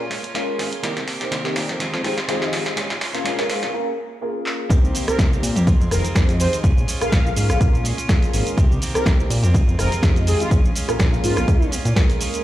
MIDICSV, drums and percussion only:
0, 0, Header, 1, 2, 480
1, 0, Start_track
1, 0, Tempo, 483871
1, 827, Time_signature, 4, 2, 24, 8
1, 12338, End_track
2, 0, Start_track
2, 0, Title_t, "Drums"
2, 107, Note_on_c, 9, 38, 87
2, 107, Note_on_c, 9, 46, 101
2, 207, Note_off_c, 9, 38, 0
2, 207, Note_off_c, 9, 46, 0
2, 239, Note_on_c, 9, 42, 52
2, 338, Note_off_c, 9, 42, 0
2, 348, Note_on_c, 9, 38, 90
2, 348, Note_on_c, 9, 42, 77
2, 447, Note_off_c, 9, 38, 0
2, 447, Note_off_c, 9, 42, 0
2, 588, Note_on_c, 9, 38, 86
2, 588, Note_on_c, 9, 46, 104
2, 688, Note_off_c, 9, 38, 0
2, 688, Note_off_c, 9, 46, 0
2, 720, Note_on_c, 9, 42, 55
2, 819, Note_off_c, 9, 42, 0
2, 828, Note_on_c, 9, 38, 91
2, 828, Note_on_c, 9, 42, 83
2, 928, Note_off_c, 9, 38, 0
2, 928, Note_off_c, 9, 42, 0
2, 960, Note_on_c, 9, 38, 84
2, 960, Note_on_c, 9, 42, 40
2, 1059, Note_off_c, 9, 38, 0
2, 1059, Note_off_c, 9, 42, 0
2, 1068, Note_on_c, 9, 38, 95
2, 1068, Note_on_c, 9, 46, 104
2, 1167, Note_off_c, 9, 38, 0
2, 1167, Note_off_c, 9, 46, 0
2, 1200, Note_on_c, 9, 38, 82
2, 1200, Note_on_c, 9, 42, 54
2, 1299, Note_off_c, 9, 38, 0
2, 1299, Note_off_c, 9, 42, 0
2, 1308, Note_on_c, 9, 38, 94
2, 1308, Note_on_c, 9, 42, 83
2, 1407, Note_off_c, 9, 38, 0
2, 1407, Note_off_c, 9, 42, 0
2, 1439, Note_on_c, 9, 38, 84
2, 1538, Note_off_c, 9, 38, 0
2, 1547, Note_on_c, 9, 38, 98
2, 1547, Note_on_c, 9, 46, 106
2, 1646, Note_off_c, 9, 38, 0
2, 1646, Note_off_c, 9, 46, 0
2, 1679, Note_on_c, 9, 38, 82
2, 1679, Note_on_c, 9, 42, 51
2, 1779, Note_off_c, 9, 38, 0
2, 1779, Note_off_c, 9, 42, 0
2, 1788, Note_on_c, 9, 38, 99
2, 1788, Note_on_c, 9, 42, 84
2, 1887, Note_off_c, 9, 38, 0
2, 1887, Note_off_c, 9, 42, 0
2, 1921, Note_on_c, 9, 38, 82
2, 2020, Note_off_c, 9, 38, 0
2, 2028, Note_on_c, 9, 38, 93
2, 2028, Note_on_c, 9, 46, 101
2, 2128, Note_off_c, 9, 38, 0
2, 2128, Note_off_c, 9, 46, 0
2, 2158, Note_on_c, 9, 38, 88
2, 2158, Note_on_c, 9, 42, 53
2, 2257, Note_off_c, 9, 38, 0
2, 2257, Note_off_c, 9, 42, 0
2, 2268, Note_on_c, 9, 38, 101
2, 2268, Note_on_c, 9, 42, 83
2, 2367, Note_off_c, 9, 38, 0
2, 2367, Note_off_c, 9, 42, 0
2, 2400, Note_on_c, 9, 38, 90
2, 2499, Note_off_c, 9, 38, 0
2, 2508, Note_on_c, 9, 38, 98
2, 2508, Note_on_c, 9, 46, 95
2, 2607, Note_off_c, 9, 38, 0
2, 2607, Note_off_c, 9, 46, 0
2, 2640, Note_on_c, 9, 38, 88
2, 2640, Note_on_c, 9, 42, 54
2, 2739, Note_off_c, 9, 38, 0
2, 2739, Note_off_c, 9, 42, 0
2, 2748, Note_on_c, 9, 38, 102
2, 2748, Note_on_c, 9, 42, 84
2, 2848, Note_off_c, 9, 38, 0
2, 2848, Note_off_c, 9, 42, 0
2, 2879, Note_on_c, 9, 38, 92
2, 2879, Note_on_c, 9, 42, 40
2, 2979, Note_off_c, 9, 38, 0
2, 2979, Note_off_c, 9, 42, 0
2, 2988, Note_on_c, 9, 38, 103
2, 2988, Note_on_c, 9, 46, 105
2, 3088, Note_off_c, 9, 38, 0
2, 3088, Note_off_c, 9, 46, 0
2, 3120, Note_on_c, 9, 38, 90
2, 3120, Note_on_c, 9, 42, 58
2, 3219, Note_off_c, 9, 38, 0
2, 3219, Note_off_c, 9, 42, 0
2, 3229, Note_on_c, 9, 38, 102
2, 3229, Note_on_c, 9, 42, 88
2, 3328, Note_off_c, 9, 38, 0
2, 3328, Note_off_c, 9, 42, 0
2, 3359, Note_on_c, 9, 38, 99
2, 3359, Note_on_c, 9, 42, 38
2, 3458, Note_off_c, 9, 38, 0
2, 3458, Note_off_c, 9, 42, 0
2, 3468, Note_on_c, 9, 38, 101
2, 3468, Note_on_c, 9, 46, 103
2, 3567, Note_off_c, 9, 38, 0
2, 3567, Note_off_c, 9, 46, 0
2, 3599, Note_on_c, 9, 38, 93
2, 3599, Note_on_c, 9, 42, 58
2, 3698, Note_off_c, 9, 38, 0
2, 3698, Note_off_c, 9, 42, 0
2, 4426, Note_on_c, 9, 39, 89
2, 4526, Note_off_c, 9, 39, 0
2, 4665, Note_on_c, 9, 36, 125
2, 4667, Note_on_c, 9, 42, 71
2, 4673, Note_on_c, 9, 82, 46
2, 4765, Note_off_c, 9, 36, 0
2, 4766, Note_off_c, 9, 42, 0
2, 4772, Note_off_c, 9, 82, 0
2, 4806, Note_on_c, 9, 82, 23
2, 4905, Note_off_c, 9, 82, 0
2, 4908, Note_on_c, 9, 46, 107
2, 4914, Note_on_c, 9, 82, 81
2, 5007, Note_off_c, 9, 46, 0
2, 5014, Note_off_c, 9, 82, 0
2, 5039, Note_on_c, 9, 37, 78
2, 5039, Note_on_c, 9, 42, 56
2, 5045, Note_on_c, 9, 82, 34
2, 5138, Note_off_c, 9, 37, 0
2, 5138, Note_off_c, 9, 42, 0
2, 5144, Note_off_c, 9, 82, 0
2, 5145, Note_on_c, 9, 36, 124
2, 5148, Note_on_c, 9, 42, 71
2, 5150, Note_on_c, 9, 38, 123
2, 5155, Note_on_c, 9, 82, 46
2, 5244, Note_off_c, 9, 36, 0
2, 5248, Note_off_c, 9, 42, 0
2, 5249, Note_off_c, 9, 38, 0
2, 5254, Note_off_c, 9, 82, 0
2, 5286, Note_on_c, 9, 82, 23
2, 5385, Note_off_c, 9, 82, 0
2, 5388, Note_on_c, 9, 46, 112
2, 5395, Note_on_c, 9, 82, 75
2, 5487, Note_off_c, 9, 46, 0
2, 5494, Note_off_c, 9, 82, 0
2, 5519, Note_on_c, 9, 42, 55
2, 5526, Note_on_c, 9, 82, 34
2, 5618, Note_off_c, 9, 42, 0
2, 5625, Note_off_c, 9, 82, 0
2, 5625, Note_on_c, 9, 36, 120
2, 5627, Note_on_c, 9, 42, 70
2, 5634, Note_on_c, 9, 82, 44
2, 5724, Note_off_c, 9, 36, 0
2, 5726, Note_off_c, 9, 42, 0
2, 5733, Note_off_c, 9, 82, 0
2, 5766, Note_on_c, 9, 82, 23
2, 5865, Note_off_c, 9, 82, 0
2, 5866, Note_on_c, 9, 37, 58
2, 5866, Note_on_c, 9, 46, 108
2, 5873, Note_on_c, 9, 82, 80
2, 5966, Note_off_c, 9, 37, 0
2, 5966, Note_off_c, 9, 46, 0
2, 5972, Note_off_c, 9, 82, 0
2, 5997, Note_on_c, 9, 42, 55
2, 6004, Note_on_c, 9, 82, 34
2, 6097, Note_off_c, 9, 42, 0
2, 6103, Note_off_c, 9, 82, 0
2, 6105, Note_on_c, 9, 36, 121
2, 6106, Note_on_c, 9, 42, 68
2, 6108, Note_on_c, 9, 38, 127
2, 6113, Note_on_c, 9, 82, 46
2, 6204, Note_off_c, 9, 36, 0
2, 6206, Note_off_c, 9, 42, 0
2, 6207, Note_off_c, 9, 38, 0
2, 6212, Note_off_c, 9, 82, 0
2, 6238, Note_on_c, 9, 42, 65
2, 6244, Note_on_c, 9, 82, 23
2, 6337, Note_off_c, 9, 42, 0
2, 6344, Note_off_c, 9, 82, 0
2, 6347, Note_on_c, 9, 46, 107
2, 6353, Note_on_c, 9, 82, 78
2, 6446, Note_off_c, 9, 46, 0
2, 6452, Note_off_c, 9, 82, 0
2, 6479, Note_on_c, 9, 42, 56
2, 6485, Note_on_c, 9, 82, 34
2, 6578, Note_off_c, 9, 42, 0
2, 6584, Note_off_c, 9, 82, 0
2, 6585, Note_on_c, 9, 36, 125
2, 6586, Note_on_c, 9, 42, 68
2, 6592, Note_on_c, 9, 82, 46
2, 6685, Note_off_c, 9, 36, 0
2, 6685, Note_off_c, 9, 42, 0
2, 6691, Note_off_c, 9, 82, 0
2, 6723, Note_on_c, 9, 82, 23
2, 6822, Note_off_c, 9, 82, 0
2, 6826, Note_on_c, 9, 46, 114
2, 6832, Note_on_c, 9, 82, 77
2, 6925, Note_off_c, 9, 46, 0
2, 6931, Note_off_c, 9, 82, 0
2, 6958, Note_on_c, 9, 37, 77
2, 6958, Note_on_c, 9, 42, 55
2, 6965, Note_on_c, 9, 82, 32
2, 7057, Note_off_c, 9, 37, 0
2, 7057, Note_off_c, 9, 42, 0
2, 7064, Note_off_c, 9, 82, 0
2, 7066, Note_on_c, 9, 36, 124
2, 7066, Note_on_c, 9, 42, 68
2, 7068, Note_on_c, 9, 38, 127
2, 7073, Note_on_c, 9, 82, 43
2, 7165, Note_off_c, 9, 36, 0
2, 7166, Note_off_c, 9, 42, 0
2, 7167, Note_off_c, 9, 38, 0
2, 7172, Note_off_c, 9, 82, 0
2, 7205, Note_on_c, 9, 82, 23
2, 7304, Note_off_c, 9, 82, 0
2, 7306, Note_on_c, 9, 46, 111
2, 7312, Note_on_c, 9, 82, 76
2, 7405, Note_off_c, 9, 46, 0
2, 7412, Note_off_c, 9, 82, 0
2, 7438, Note_on_c, 9, 37, 79
2, 7438, Note_on_c, 9, 42, 53
2, 7444, Note_on_c, 9, 82, 32
2, 7537, Note_off_c, 9, 37, 0
2, 7537, Note_off_c, 9, 42, 0
2, 7543, Note_off_c, 9, 82, 0
2, 7546, Note_on_c, 9, 36, 120
2, 7546, Note_on_c, 9, 42, 66
2, 7553, Note_on_c, 9, 82, 41
2, 7645, Note_off_c, 9, 36, 0
2, 7646, Note_off_c, 9, 42, 0
2, 7652, Note_off_c, 9, 82, 0
2, 7685, Note_on_c, 9, 82, 22
2, 7784, Note_off_c, 9, 82, 0
2, 7786, Note_on_c, 9, 46, 116
2, 7793, Note_on_c, 9, 82, 77
2, 7885, Note_off_c, 9, 46, 0
2, 7892, Note_off_c, 9, 82, 0
2, 7919, Note_on_c, 9, 42, 53
2, 7925, Note_on_c, 9, 82, 33
2, 8018, Note_off_c, 9, 42, 0
2, 8024, Note_off_c, 9, 82, 0
2, 8026, Note_on_c, 9, 36, 127
2, 8026, Note_on_c, 9, 37, 66
2, 8026, Note_on_c, 9, 42, 68
2, 8028, Note_on_c, 9, 38, 127
2, 8033, Note_on_c, 9, 82, 44
2, 8126, Note_off_c, 9, 36, 0
2, 8126, Note_off_c, 9, 37, 0
2, 8126, Note_off_c, 9, 42, 0
2, 8127, Note_off_c, 9, 38, 0
2, 8132, Note_off_c, 9, 82, 0
2, 8158, Note_on_c, 9, 42, 59
2, 8165, Note_on_c, 9, 82, 22
2, 8258, Note_off_c, 9, 42, 0
2, 8264, Note_off_c, 9, 82, 0
2, 8268, Note_on_c, 9, 46, 110
2, 8275, Note_on_c, 9, 82, 72
2, 8367, Note_off_c, 9, 46, 0
2, 8374, Note_off_c, 9, 82, 0
2, 8400, Note_on_c, 9, 42, 54
2, 8406, Note_on_c, 9, 82, 34
2, 8499, Note_off_c, 9, 42, 0
2, 8505, Note_off_c, 9, 82, 0
2, 8506, Note_on_c, 9, 36, 127
2, 8508, Note_on_c, 9, 42, 67
2, 8515, Note_on_c, 9, 82, 45
2, 8606, Note_off_c, 9, 36, 0
2, 8607, Note_off_c, 9, 42, 0
2, 8614, Note_off_c, 9, 82, 0
2, 8646, Note_on_c, 9, 82, 22
2, 8745, Note_off_c, 9, 82, 0
2, 8748, Note_on_c, 9, 46, 116
2, 8754, Note_on_c, 9, 82, 77
2, 8847, Note_off_c, 9, 46, 0
2, 8854, Note_off_c, 9, 82, 0
2, 8881, Note_on_c, 9, 37, 79
2, 8881, Note_on_c, 9, 42, 52
2, 8887, Note_on_c, 9, 82, 32
2, 8980, Note_off_c, 9, 37, 0
2, 8980, Note_off_c, 9, 42, 0
2, 8986, Note_off_c, 9, 82, 0
2, 8987, Note_on_c, 9, 36, 126
2, 8990, Note_on_c, 9, 42, 65
2, 8991, Note_on_c, 9, 38, 124
2, 8996, Note_on_c, 9, 82, 44
2, 9086, Note_off_c, 9, 36, 0
2, 9089, Note_off_c, 9, 42, 0
2, 9090, Note_off_c, 9, 38, 0
2, 9095, Note_off_c, 9, 82, 0
2, 9126, Note_on_c, 9, 82, 23
2, 9226, Note_off_c, 9, 82, 0
2, 9230, Note_on_c, 9, 46, 115
2, 9237, Note_on_c, 9, 82, 74
2, 9329, Note_off_c, 9, 46, 0
2, 9336, Note_off_c, 9, 82, 0
2, 9360, Note_on_c, 9, 42, 51
2, 9366, Note_on_c, 9, 82, 33
2, 9459, Note_off_c, 9, 42, 0
2, 9466, Note_off_c, 9, 82, 0
2, 9467, Note_on_c, 9, 36, 127
2, 9469, Note_on_c, 9, 42, 65
2, 9476, Note_on_c, 9, 82, 43
2, 9566, Note_off_c, 9, 36, 0
2, 9569, Note_off_c, 9, 42, 0
2, 9575, Note_off_c, 9, 82, 0
2, 9608, Note_on_c, 9, 82, 21
2, 9707, Note_off_c, 9, 82, 0
2, 9711, Note_on_c, 9, 37, 62
2, 9711, Note_on_c, 9, 46, 108
2, 9717, Note_on_c, 9, 82, 73
2, 9810, Note_off_c, 9, 37, 0
2, 9810, Note_off_c, 9, 46, 0
2, 9816, Note_off_c, 9, 82, 0
2, 9842, Note_on_c, 9, 42, 53
2, 9848, Note_on_c, 9, 82, 31
2, 9941, Note_off_c, 9, 42, 0
2, 9947, Note_on_c, 9, 36, 121
2, 9948, Note_off_c, 9, 82, 0
2, 9950, Note_on_c, 9, 42, 66
2, 9951, Note_on_c, 9, 38, 124
2, 9956, Note_on_c, 9, 82, 42
2, 10046, Note_off_c, 9, 36, 0
2, 10049, Note_off_c, 9, 42, 0
2, 10050, Note_off_c, 9, 38, 0
2, 10055, Note_off_c, 9, 82, 0
2, 10081, Note_on_c, 9, 42, 60
2, 10087, Note_on_c, 9, 82, 22
2, 10180, Note_off_c, 9, 42, 0
2, 10187, Note_off_c, 9, 82, 0
2, 10189, Note_on_c, 9, 46, 109
2, 10195, Note_on_c, 9, 82, 73
2, 10288, Note_off_c, 9, 46, 0
2, 10295, Note_off_c, 9, 82, 0
2, 10320, Note_on_c, 9, 42, 54
2, 10327, Note_on_c, 9, 82, 32
2, 10419, Note_off_c, 9, 42, 0
2, 10426, Note_off_c, 9, 82, 0
2, 10427, Note_on_c, 9, 36, 127
2, 10429, Note_on_c, 9, 42, 64
2, 10436, Note_on_c, 9, 82, 44
2, 10526, Note_off_c, 9, 36, 0
2, 10528, Note_off_c, 9, 42, 0
2, 10535, Note_off_c, 9, 82, 0
2, 10567, Note_on_c, 9, 82, 23
2, 10666, Note_off_c, 9, 82, 0
2, 10669, Note_on_c, 9, 46, 113
2, 10676, Note_on_c, 9, 82, 80
2, 10769, Note_off_c, 9, 46, 0
2, 10775, Note_off_c, 9, 82, 0
2, 10800, Note_on_c, 9, 37, 82
2, 10800, Note_on_c, 9, 42, 51
2, 10807, Note_on_c, 9, 82, 31
2, 10899, Note_off_c, 9, 37, 0
2, 10899, Note_off_c, 9, 42, 0
2, 10906, Note_off_c, 9, 82, 0
2, 10907, Note_on_c, 9, 36, 116
2, 10908, Note_on_c, 9, 42, 65
2, 10910, Note_on_c, 9, 38, 119
2, 10915, Note_on_c, 9, 82, 44
2, 11006, Note_off_c, 9, 36, 0
2, 11007, Note_off_c, 9, 42, 0
2, 11009, Note_off_c, 9, 38, 0
2, 11014, Note_off_c, 9, 82, 0
2, 11046, Note_on_c, 9, 82, 23
2, 11145, Note_off_c, 9, 82, 0
2, 11147, Note_on_c, 9, 46, 109
2, 11154, Note_on_c, 9, 82, 78
2, 11247, Note_off_c, 9, 46, 0
2, 11253, Note_off_c, 9, 82, 0
2, 11279, Note_on_c, 9, 37, 88
2, 11279, Note_on_c, 9, 42, 50
2, 11286, Note_on_c, 9, 82, 34
2, 11378, Note_off_c, 9, 37, 0
2, 11378, Note_off_c, 9, 42, 0
2, 11385, Note_off_c, 9, 82, 0
2, 11387, Note_on_c, 9, 36, 127
2, 11388, Note_on_c, 9, 42, 64
2, 11394, Note_on_c, 9, 82, 43
2, 11486, Note_off_c, 9, 36, 0
2, 11487, Note_off_c, 9, 42, 0
2, 11494, Note_off_c, 9, 82, 0
2, 11527, Note_on_c, 9, 82, 21
2, 11626, Note_off_c, 9, 82, 0
2, 11628, Note_on_c, 9, 46, 112
2, 11635, Note_on_c, 9, 82, 80
2, 11727, Note_off_c, 9, 46, 0
2, 11734, Note_off_c, 9, 82, 0
2, 11759, Note_on_c, 9, 42, 49
2, 11766, Note_on_c, 9, 82, 34
2, 11858, Note_off_c, 9, 42, 0
2, 11865, Note_off_c, 9, 82, 0
2, 11867, Note_on_c, 9, 36, 127
2, 11868, Note_on_c, 9, 37, 69
2, 11868, Note_on_c, 9, 42, 62
2, 11869, Note_on_c, 9, 38, 121
2, 11874, Note_on_c, 9, 82, 43
2, 11966, Note_off_c, 9, 36, 0
2, 11967, Note_off_c, 9, 37, 0
2, 11967, Note_off_c, 9, 42, 0
2, 11968, Note_off_c, 9, 38, 0
2, 11974, Note_off_c, 9, 82, 0
2, 11999, Note_on_c, 9, 42, 61
2, 12006, Note_on_c, 9, 82, 21
2, 12099, Note_off_c, 9, 42, 0
2, 12105, Note_off_c, 9, 82, 0
2, 12108, Note_on_c, 9, 46, 107
2, 12115, Note_on_c, 9, 82, 77
2, 12207, Note_off_c, 9, 46, 0
2, 12214, Note_off_c, 9, 82, 0
2, 12240, Note_on_c, 9, 42, 50
2, 12247, Note_on_c, 9, 82, 34
2, 12338, Note_off_c, 9, 42, 0
2, 12338, Note_off_c, 9, 82, 0
2, 12338, End_track
0, 0, End_of_file